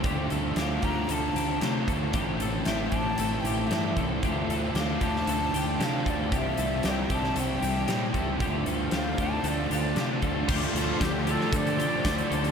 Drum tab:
CC |----------------|----------------|----------------|----------------|
HH |x-x-x-x-x-x-x-x-|x-x-x-x-x-x-x-x-|x-x-x-x-x-x-x-x-|x-x-x-x-x-x-x-x-|
SD |----o-------o---|----o-------o---|----o--o----o---|----o--o----o---|
BD |o-----o-------o-|o-----o-------o-|o-----o-------o-|o-----o-------o-|

CC |----------------|x---------------|
HH |x-x-x-x-x-x-x-x-|-xx-x-x-xxx-xxxx|
SD |----o-------o---|----o--o----o---|
BD |o-----o-------o-|o---o---o---o---|